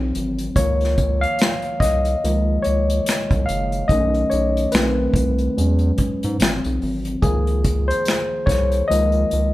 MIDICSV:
0, 0, Header, 1, 4, 480
1, 0, Start_track
1, 0, Key_signature, -5, "major"
1, 0, Tempo, 833333
1, 321, Time_signature, 4, 2, 24, 8
1, 5493, End_track
2, 0, Start_track
2, 0, Title_t, "Tine electric piano"
2, 0, Program_c, 0, 4
2, 0, Control_c, 0, 64, 127
2, 0, Note_on_c, 0, 52, 45
2, 0, Note_on_c, 0, 54, 45
2, 0, Note_on_c, 0, 60, 53
2, 179, Note_off_c, 0, 52, 0
2, 182, Note_off_c, 0, 54, 0
2, 184, Note_off_c, 0, 60, 0
2, 323, Note_on_c, 0, 73, 87
2, 326, Note_on_c, 0, 51, 50
2, 329, Note_on_c, 0, 53, 45
2, 330, Control_c, 0, 64, 0
2, 334, Note_on_c, 0, 58, 60
2, 414, Control_c, 0, 64, 127
2, 660, Note_off_c, 0, 51, 0
2, 661, Note_off_c, 0, 53, 0
2, 664, Note_off_c, 0, 58, 0
2, 699, Note_on_c, 0, 77, 102
2, 715, Note_off_c, 0, 73, 0
2, 1037, Note_on_c, 0, 75, 89
2, 1049, Note_off_c, 0, 77, 0
2, 1288, Note_on_c, 0, 51, 49
2, 1289, Control_c, 0, 64, 0
2, 1290, Note_on_c, 0, 53, 46
2, 1292, Note_on_c, 0, 56, 44
2, 1293, Note_on_c, 0, 58, 55
2, 1374, Control_c, 0, 64, 127
2, 1512, Note_on_c, 0, 73, 81
2, 1534, Note_off_c, 0, 75, 0
2, 1991, Note_on_c, 0, 77, 83
2, 2011, Note_off_c, 0, 73, 0
2, 2219, Note_off_c, 0, 77, 0
2, 2221, Note_off_c, 0, 51, 0
2, 2223, Note_off_c, 0, 53, 0
2, 2223, Note_off_c, 0, 56, 0
2, 2224, Note_off_c, 0, 58, 0
2, 2234, Note_on_c, 0, 75, 87
2, 2246, Note_on_c, 0, 51, 54
2, 2249, Control_c, 0, 64, 0
2, 2250, Note_on_c, 0, 57, 47
2, 2253, Note_on_c, 0, 61, 57
2, 2337, Control_c, 0, 64, 127
2, 2476, Note_on_c, 0, 73, 73
2, 2485, Note_off_c, 0, 75, 0
2, 2701, Note_off_c, 0, 51, 0
2, 2703, Note_off_c, 0, 57, 0
2, 2704, Note_off_c, 0, 61, 0
2, 2718, Note_on_c, 0, 71, 69
2, 2726, Note_off_c, 0, 73, 0
2, 2728, Control_c, 0, 64, 0
2, 2728, Note_on_c, 0, 51, 52
2, 2732, Note_on_c, 0, 57, 48
2, 2736, Note_on_c, 0, 60, 61
2, 2837, Control_c, 0, 64, 127
2, 3181, Note_off_c, 0, 51, 0
2, 3184, Note_off_c, 0, 57, 0
2, 3185, Note_off_c, 0, 60, 0
2, 3208, Control_c, 0, 64, 0
2, 3208, Note_on_c, 0, 54, 51
2, 3210, Note_on_c, 0, 56, 44
2, 3215, Note_on_c, 0, 61, 54
2, 3319, Control_c, 0, 64, 127
2, 3541, Note_off_c, 0, 54, 0
2, 3542, Note_off_c, 0, 56, 0
2, 3544, Note_off_c, 0, 61, 0
2, 3657, Note_off_c, 0, 71, 0
2, 3683, Note_on_c, 0, 52, 46
2, 3686, Note_on_c, 0, 54, 43
2, 3687, Control_c, 0, 64, 0
2, 3688, Note_on_c, 0, 60, 49
2, 3801, Control_c, 0, 64, 127
2, 4139, Note_off_c, 0, 52, 0
2, 4141, Note_off_c, 0, 54, 0
2, 4142, Note_off_c, 0, 60, 0
2, 4160, Note_on_c, 0, 68, 81
2, 4164, Note_on_c, 0, 51, 54
2, 4168, Control_c, 0, 64, 0
2, 4168, Note_on_c, 0, 53, 50
2, 4173, Note_on_c, 0, 58, 58
2, 4254, Control_c, 0, 64, 127
2, 4538, Note_on_c, 0, 72, 99
2, 4554, Note_off_c, 0, 68, 0
2, 4873, Note_on_c, 0, 73, 85
2, 4889, Note_off_c, 0, 72, 0
2, 5100, Note_off_c, 0, 51, 0
2, 5102, Note_off_c, 0, 53, 0
2, 5104, Note_off_c, 0, 58, 0
2, 5113, Note_on_c, 0, 75, 89
2, 5123, Note_on_c, 0, 51, 50
2, 5124, Note_on_c, 0, 53, 45
2, 5125, Note_off_c, 0, 73, 0
2, 5128, Control_c, 0, 64, 0
2, 5128, Note_on_c, 0, 56, 45
2, 5130, Note_on_c, 0, 58, 56
2, 5237, Control_c, 0, 64, 127
2, 5458, Note_off_c, 0, 51, 0
2, 5459, Note_off_c, 0, 53, 0
2, 5460, Note_off_c, 0, 56, 0
2, 5462, Note_off_c, 0, 58, 0
2, 5493, Note_off_c, 0, 75, 0
2, 5493, End_track
3, 0, Start_track
3, 0, Title_t, "Analog synth bass"
3, 0, Program_c, 1, 38
3, 0, Note_on_c, 1, 35, 74
3, 72, Note_off_c, 1, 35, 0
3, 93, Note_on_c, 1, 32, 82
3, 288, Note_off_c, 1, 32, 0
3, 328, Note_on_c, 1, 37, 91
3, 725, Note_off_c, 1, 37, 0
3, 1043, Note_on_c, 1, 36, 89
3, 1242, Note_off_c, 1, 36, 0
3, 1293, Note_on_c, 1, 37, 101
3, 1488, Note_off_c, 1, 37, 0
3, 1534, Note_on_c, 1, 37, 86
3, 1729, Note_off_c, 1, 37, 0
3, 1911, Note_on_c, 1, 36, 73
3, 1989, Note_off_c, 1, 36, 0
3, 2013, Note_on_c, 1, 30, 78
3, 2208, Note_off_c, 1, 30, 0
3, 2248, Note_on_c, 1, 35, 105
3, 2445, Note_off_c, 1, 35, 0
3, 2494, Note_on_c, 1, 35, 104
3, 2688, Note_off_c, 1, 35, 0
3, 2733, Note_on_c, 1, 35, 95
3, 2928, Note_off_c, 1, 35, 0
3, 2964, Note_on_c, 1, 36, 95
3, 3163, Note_off_c, 1, 36, 0
3, 3214, Note_on_c, 1, 40, 95
3, 3409, Note_off_c, 1, 40, 0
3, 3453, Note_on_c, 1, 44, 42
3, 3507, Note_off_c, 1, 44, 0
3, 3595, Note_on_c, 1, 44, 78
3, 3672, Note_off_c, 1, 44, 0
3, 3693, Note_on_c, 1, 32, 96
3, 3806, Note_off_c, 1, 32, 0
3, 3834, Note_on_c, 1, 35, 77
3, 3911, Note_off_c, 1, 35, 0
3, 3932, Note_on_c, 1, 32, 80
3, 4127, Note_off_c, 1, 32, 0
3, 4168, Note_on_c, 1, 37, 96
3, 4565, Note_off_c, 1, 37, 0
3, 4885, Note_on_c, 1, 36, 91
3, 5083, Note_off_c, 1, 36, 0
3, 5132, Note_on_c, 1, 37, 98
3, 5328, Note_off_c, 1, 37, 0
3, 5373, Note_on_c, 1, 37, 93
3, 5493, Note_off_c, 1, 37, 0
3, 5493, End_track
4, 0, Start_track
4, 0, Title_t, "Drums"
4, 86, Note_on_c, 9, 42, 59
4, 144, Note_off_c, 9, 42, 0
4, 222, Note_on_c, 9, 42, 41
4, 279, Note_off_c, 9, 42, 0
4, 321, Note_on_c, 9, 36, 93
4, 324, Note_on_c, 9, 42, 64
4, 379, Note_off_c, 9, 36, 0
4, 382, Note_off_c, 9, 42, 0
4, 465, Note_on_c, 9, 42, 30
4, 484, Note_on_c, 9, 38, 32
4, 523, Note_off_c, 9, 42, 0
4, 541, Note_off_c, 9, 38, 0
4, 563, Note_on_c, 9, 42, 51
4, 564, Note_on_c, 9, 36, 75
4, 621, Note_off_c, 9, 36, 0
4, 621, Note_off_c, 9, 42, 0
4, 711, Note_on_c, 9, 42, 49
4, 769, Note_off_c, 9, 42, 0
4, 799, Note_on_c, 9, 42, 70
4, 816, Note_on_c, 9, 26, 73
4, 816, Note_on_c, 9, 38, 96
4, 856, Note_off_c, 9, 42, 0
4, 873, Note_off_c, 9, 26, 0
4, 873, Note_off_c, 9, 38, 0
4, 934, Note_on_c, 9, 42, 28
4, 992, Note_off_c, 9, 42, 0
4, 1037, Note_on_c, 9, 36, 81
4, 1050, Note_on_c, 9, 42, 64
4, 1055, Note_on_c, 9, 38, 29
4, 1095, Note_off_c, 9, 36, 0
4, 1107, Note_off_c, 9, 42, 0
4, 1113, Note_off_c, 9, 38, 0
4, 1180, Note_on_c, 9, 42, 42
4, 1238, Note_off_c, 9, 42, 0
4, 1294, Note_on_c, 9, 42, 60
4, 1351, Note_off_c, 9, 42, 0
4, 1523, Note_on_c, 9, 42, 60
4, 1580, Note_off_c, 9, 42, 0
4, 1669, Note_on_c, 9, 42, 54
4, 1726, Note_off_c, 9, 42, 0
4, 1765, Note_on_c, 9, 42, 80
4, 1779, Note_on_c, 9, 26, 76
4, 1779, Note_on_c, 9, 38, 91
4, 1822, Note_off_c, 9, 42, 0
4, 1837, Note_off_c, 9, 26, 0
4, 1837, Note_off_c, 9, 38, 0
4, 1905, Note_on_c, 9, 36, 89
4, 1907, Note_on_c, 9, 42, 32
4, 1963, Note_off_c, 9, 36, 0
4, 1965, Note_off_c, 9, 42, 0
4, 2009, Note_on_c, 9, 42, 59
4, 2066, Note_off_c, 9, 42, 0
4, 2144, Note_on_c, 9, 42, 44
4, 2202, Note_off_c, 9, 42, 0
4, 2242, Note_on_c, 9, 36, 93
4, 2247, Note_on_c, 9, 42, 61
4, 2300, Note_off_c, 9, 36, 0
4, 2304, Note_off_c, 9, 42, 0
4, 2387, Note_on_c, 9, 42, 31
4, 2444, Note_off_c, 9, 42, 0
4, 2484, Note_on_c, 9, 42, 50
4, 2542, Note_off_c, 9, 42, 0
4, 2632, Note_on_c, 9, 42, 52
4, 2690, Note_off_c, 9, 42, 0
4, 2718, Note_on_c, 9, 42, 71
4, 2735, Note_on_c, 9, 26, 74
4, 2735, Note_on_c, 9, 38, 95
4, 2776, Note_off_c, 9, 42, 0
4, 2793, Note_off_c, 9, 26, 0
4, 2793, Note_off_c, 9, 38, 0
4, 2958, Note_on_c, 9, 36, 85
4, 2970, Note_on_c, 9, 42, 68
4, 3016, Note_off_c, 9, 36, 0
4, 3028, Note_off_c, 9, 42, 0
4, 3102, Note_on_c, 9, 42, 39
4, 3159, Note_off_c, 9, 42, 0
4, 3215, Note_on_c, 9, 42, 69
4, 3273, Note_off_c, 9, 42, 0
4, 3333, Note_on_c, 9, 42, 31
4, 3391, Note_off_c, 9, 42, 0
4, 3443, Note_on_c, 9, 42, 58
4, 3447, Note_on_c, 9, 36, 74
4, 3500, Note_off_c, 9, 42, 0
4, 3505, Note_off_c, 9, 36, 0
4, 3588, Note_on_c, 9, 42, 48
4, 3646, Note_off_c, 9, 42, 0
4, 3685, Note_on_c, 9, 42, 83
4, 3699, Note_on_c, 9, 26, 76
4, 3700, Note_on_c, 9, 38, 98
4, 3743, Note_off_c, 9, 42, 0
4, 3757, Note_off_c, 9, 26, 0
4, 3757, Note_off_c, 9, 38, 0
4, 3827, Note_on_c, 9, 42, 35
4, 3885, Note_off_c, 9, 42, 0
4, 3927, Note_on_c, 9, 46, 39
4, 3985, Note_off_c, 9, 46, 0
4, 4060, Note_on_c, 9, 42, 45
4, 4118, Note_off_c, 9, 42, 0
4, 4162, Note_on_c, 9, 36, 87
4, 4165, Note_on_c, 9, 42, 59
4, 4219, Note_off_c, 9, 36, 0
4, 4223, Note_off_c, 9, 42, 0
4, 4304, Note_on_c, 9, 42, 32
4, 4361, Note_off_c, 9, 42, 0
4, 4403, Note_on_c, 9, 42, 53
4, 4404, Note_on_c, 9, 36, 80
4, 4461, Note_off_c, 9, 36, 0
4, 4461, Note_off_c, 9, 42, 0
4, 4554, Note_on_c, 9, 42, 49
4, 4611, Note_off_c, 9, 42, 0
4, 4639, Note_on_c, 9, 42, 73
4, 4656, Note_on_c, 9, 26, 76
4, 4656, Note_on_c, 9, 38, 94
4, 4697, Note_off_c, 9, 42, 0
4, 4714, Note_off_c, 9, 26, 0
4, 4714, Note_off_c, 9, 38, 0
4, 4878, Note_on_c, 9, 36, 80
4, 4891, Note_on_c, 9, 42, 69
4, 4896, Note_on_c, 9, 38, 29
4, 4936, Note_off_c, 9, 36, 0
4, 4949, Note_off_c, 9, 42, 0
4, 4954, Note_off_c, 9, 38, 0
4, 5021, Note_on_c, 9, 42, 42
4, 5079, Note_off_c, 9, 42, 0
4, 5135, Note_on_c, 9, 42, 65
4, 5192, Note_off_c, 9, 42, 0
4, 5254, Note_on_c, 9, 42, 30
4, 5312, Note_off_c, 9, 42, 0
4, 5364, Note_on_c, 9, 42, 60
4, 5421, Note_off_c, 9, 42, 0
4, 5493, End_track
0, 0, End_of_file